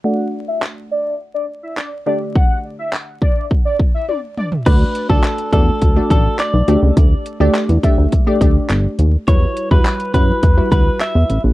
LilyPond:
<<
  \new Staff \with { instrumentName = "Analog synth lead" } { \time 4/4 \key d \major \tempo 4 = 104 fis''8 r16 e''16 r8 d''8 r16 d''16 r16 e''16 d''16 r16 d''16 r16 | fis''8 r16 e''16 r8 d''8 r16 d''16 r16 e''16 d''16 r16 d''16 r16 | r1 | r1 |
r1 | }
  \new Staff \with { instrumentName = "Clean electric guitar" } { \time 4/4 \key d \major r1 | r1 | b'8. a'8. a'4 a'8 d''8. r16 | r1 |
cis''8. b'8. b'4 b'8 e''8. r16 | }
  \new Staff \with { instrumentName = "Synth pluck" } { \time 4/4 \key d \major <a d' fis' d''>2.~ <a d' fis' d''>8 <d a d' g' d''>8~ | <d a d' g' d''>2.~ <d a d' g' d''>8 r8 | <a d' fis' d''>8 r16 <a d' fis' d''>8 r16 <a d' fis' d''>8 r16 <a d' fis' d''>16 <a d' fis' d''>4 <a d' g' d''>8~ | <a d' g' d''>8 r16 <a d' g' d''>8 r16 <a d' g' e''>8 r16 <a d' g' d''>16 <a d' g' d''>4 r8 |
<g e' fis' b'>8 r16 <g e' fis' b'>8 r16 <g e' fis' b'>8 r16 <g e' fis' b'>16 <g e' fis' b'>4 r8 | }
  \new Staff \with { instrumentName = "Analog synth bass" } { \clef bass \time 4/4 \key d \major r1 | r1 | d,8 r16 d,16 r8 e,8 d,8 a,,8 r16 b,,16 d,16 cis,16 | d,8 r16 d,16 r16 e,16 r16 d,16 r8 d,8 g,,8 ees,8 |
e,8 r16 e,16 r8 fis,8 e,8 d,8 r16 e,16 a,,16 bes,,16 | }
  \new DrumStaff \with { instrumentName = "Drums" } \drummode { \time 4/4 r4 hc4 r4 hc4 | bd4 hc8 bd8 bd8 bd8 tommh8 toml16 tomfh16 | <cymc hh bd>8 hh16 bd16 <hc hh>16 hh16 <hh bd>8 <hh bd>8 <hh bd>8 <hc hh>8 hh8 | <hh bd>8 hh8 <hc hh>16 hh16 <hh bd>8 <hh bd>8 <hh bd>8 <hc hh>8 hh8 |
<hh bd>8 hh16 bd16 <hc hh>16 hh16 <hh bd>8 <hh bd>8 <hh bd>8 <hc hh>8 hh8 | }
>>